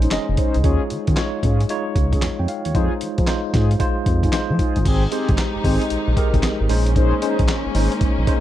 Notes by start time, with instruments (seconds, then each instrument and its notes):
Already playing: tine electric piano G#3 C#4 D#4 C5
0.02 analog polysynth C#4 D#4 G#4 C5, closed hi-hat
0.11 analog synth bass F1, tine electric piano G#3 C#4 D#4 D#5, snare, clap, closed hi-hat
0.29 analog synth bass F1
0.37 analog polysynth C#4 D#4 G#4 C5, kick, closed hi-hat
0.54 analog synth bass C#2, closed hi-hat
0.64 analog synth bass D#2, tine electric piano G#3 D#4 F4 C#5, analog polysynth C#4 F4 G#4, kick, closed hi-hat
0.90 analog synth bass D#3, closed hi-hat
1.07 analog synth bass D#3, analog polysynth C#4 F4 G#4, kick, closed hi-hat
1.16 tine electric piano G#3 D#4 F4 C#5, snare, clap, closed hi-hat
1.43 analog synth bass G#2, analog polysynth C#4 F4 G#4, kick, closed hi-hat
1.60 closed hi-hat
1.69 tine electric piano G#3 D#4 F4 C#5, closed hi-hat
1.96 analog synth bass C#2, kick, closed hi-hat
2.13 analog polysynth C#4 F4 G#4, kick, closed hi-hat
2.22 analog synth bass F2, snare, clap, closed hi-hat
2.39 analog synth bass F2, tine electric piano G5
2.48 tine electric piano F5, closed hi-hat
2.65 analog synth bass D#2, tine electric piano C#5, closed hi-hat
2.74 analog synth bass F2, tine electric piano G#3 D#4 F4 C5, analog polysynth D#4 F4 G#4, kick, closed hi-hat
3.01 analog synth bass F3, closed hi-hat
3.18 analog synth bass F3, analog polysynth D#4 F4 G#4, kick, closed hi-hat
3.27 tine electric piano G#3 D#4 F4 C5, snare, clap, closed hi-hat
3.53 analog synth bass G#2, analog polysynth D#4 F4 G#4, kick, snare, closed hi-hat
3.71 closed hi-hat
3.79 tine electric piano G#3 D#4 F4 C5, kick, closed hi-hat
4.06 analog synth bass F2, kick, closed hi-hat
4.23 analog polysynth D#4 F4 G#4, kick, closed hi-hat
4.32 tine electric piano G#3 D#4 F4 C5, snare, clap, closed hi-hat
4.50 analog synth bass F3
4.59 analog polysynth D#4 F4 G#4, kick, closed hi-hat
4.76 analog synth bass G1, closed hi-hat
4.85 analog synth bass G#1, string section D#3 G#3 D#4 G4, analog polysynth C4 G4 G#4, kick, closed hi-hat, crash
5.11 tine electric piano G#3 D#4 G4 C5, analog polysynth C4 G4 G#4, closed hi-hat
5.29 analog synth bass G1, kick, closed hi-hat
5.38 snare, clap, closed hi-hat
5.55 analog synth bass G#1
5.64 analog synth bass G#1, tine electric piano G#3 D#4 G4 C5, analog polysynth C4 G4 G#4, kick, open hi-hat
5.81 closed hi-hat
5.90 analog synth bass A#1, closed hi-hat
6.08 analog synth bass A#1
6.17 tine electric piano G#3 D#4 G4 A#4, kick, closed hi-hat
6.33 analog synth bass G#1, analog polysynth C4 G4 G#4, kick, closed hi-hat
6.43 analog synth bass G#1, snare, clap, closed hi-hat
6.61 analog synth bass G#1
6.69 analog synth bass A#1, tine electric piano G#3 C#4 D#4 C5, string section A#3 C#4, open hi-hat
6.86 closed hi-hat
6.96 analog polysynth C#4 D#4 G#4 C5, kick, closed hi-hat
7.22 tine electric piano G#3 C#4 D#4 C5, analog polysynth C#4 D#4 G#4 C5, closed hi-hat
7.39 analog synth bass A#1, kick, closed hi-hat
7.48 snare, clap, closed hi-hat
7.66 analog synth bass G#1
7.75 analog synth bass G#1, tine electric piano G#3 C#4 D#4 C5, analog polysynth C#4 D#4 G#4 C5, open hi-hat
7.92 closed hi-hat
8.01 analog synth bass A#1, kick, closed hi-hat
8.18 analog synth bass A#1
8.27 tine electric piano G#3 C#4 D#4 C5, kick, closed hi-hat